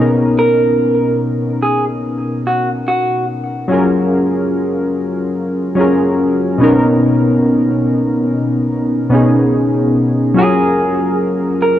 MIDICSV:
0, 0, Header, 1, 3, 480
1, 0, Start_track
1, 0, Key_signature, 6, "major"
1, 0, Tempo, 833333
1, 207, Time_signature, 4, 2, 24, 8
1, 6792, End_track
2, 0, Start_track
2, 0, Title_t, "Clean electric guitar"
2, 0, Program_c, 0, 27
2, 0, Note_on_c, 0, 68, 71
2, 190, Note_off_c, 0, 68, 0
2, 223, Note_on_c, 0, 70, 85
2, 672, Note_off_c, 0, 70, 0
2, 936, Note_on_c, 0, 68, 72
2, 1061, Note_off_c, 0, 68, 0
2, 1422, Note_on_c, 0, 66, 70
2, 1544, Note_off_c, 0, 66, 0
2, 1658, Note_on_c, 0, 66, 78
2, 1870, Note_off_c, 0, 66, 0
2, 5982, Note_on_c, 0, 68, 96
2, 6432, Note_off_c, 0, 68, 0
2, 6695, Note_on_c, 0, 70, 65
2, 6792, Note_off_c, 0, 70, 0
2, 6792, End_track
3, 0, Start_track
3, 0, Title_t, "Synth keys"
3, 0, Program_c, 1, 88
3, 0, Note_on_c, 1, 47, 66
3, 0, Note_on_c, 1, 59, 57
3, 0, Note_on_c, 1, 61, 56
3, 0, Note_on_c, 1, 63, 57
3, 6, Note_on_c, 1, 70, 70
3, 69, Control_c, 1, 64, 127
3, 1852, Note_off_c, 1, 47, 0
3, 1861, Note_off_c, 1, 59, 0
3, 1869, Note_off_c, 1, 61, 0
3, 1876, Note_off_c, 1, 63, 0
3, 1884, Note_off_c, 1, 70, 0
3, 2120, Note_on_c, 1, 54, 73
3, 2128, Note_on_c, 1, 61, 65
3, 2134, Control_c, 1, 64, 0
3, 2137, Note_on_c, 1, 65, 65
3, 2142, Note_on_c, 1, 68, 69
3, 2152, Note_on_c, 1, 70, 76
3, 2235, Control_c, 1, 64, 127
3, 2761, Note_off_c, 1, 54, 0
3, 2765, Note_off_c, 1, 61, 0
3, 2769, Note_off_c, 1, 65, 0
3, 2772, Note_off_c, 1, 68, 0
3, 2777, Note_off_c, 1, 70, 0
3, 3313, Note_on_c, 1, 54, 74
3, 3321, Note_on_c, 1, 61, 70
3, 3331, Note_on_c, 1, 65, 61
3, 3338, Note_on_c, 1, 68, 71
3, 3345, Note_on_c, 1, 70, 74
3, 3787, Note_off_c, 1, 54, 0
3, 3790, Note_off_c, 1, 61, 0
3, 3791, Note_on_c, 1, 47, 76
3, 3796, Note_off_c, 1, 65, 0
3, 3799, Note_off_c, 1, 68, 0
3, 3800, Note_on_c, 1, 59, 74
3, 3803, Note_off_c, 1, 70, 0
3, 3808, Note_on_c, 1, 61, 75
3, 3815, Control_c, 1, 64, 0
3, 3816, Note_on_c, 1, 63, 74
3, 3823, Note_on_c, 1, 70, 88
3, 3913, Control_c, 1, 64, 127
3, 4576, Note_off_c, 1, 47, 0
3, 4581, Note_off_c, 1, 59, 0
3, 4585, Note_off_c, 1, 61, 0
3, 4589, Note_off_c, 1, 63, 0
3, 4592, Note_off_c, 1, 70, 0
3, 5238, Note_on_c, 1, 47, 75
3, 5243, Note_on_c, 1, 59, 68
3, 5253, Note_on_c, 1, 61, 72
3, 5261, Note_on_c, 1, 63, 64
3, 5267, Note_on_c, 1, 68, 76
3, 5709, Note_off_c, 1, 47, 0
3, 5711, Note_off_c, 1, 59, 0
3, 5716, Note_off_c, 1, 61, 0
3, 5721, Note_off_c, 1, 63, 0
3, 5724, Note_off_c, 1, 68, 0
3, 5957, Note_on_c, 1, 54, 78
3, 5966, Note_on_c, 1, 61, 61
3, 5973, Note_on_c, 1, 65, 70
3, 5975, Control_c, 1, 64, 0
3, 5981, Note_on_c, 1, 68, 72
3, 5989, Note_on_c, 1, 70, 80
3, 6087, Control_c, 1, 64, 127
3, 6599, Note_off_c, 1, 54, 0
3, 6604, Note_off_c, 1, 61, 0
3, 6607, Note_off_c, 1, 65, 0
3, 6611, Note_off_c, 1, 68, 0
3, 6615, Note_off_c, 1, 70, 0
3, 6792, End_track
0, 0, End_of_file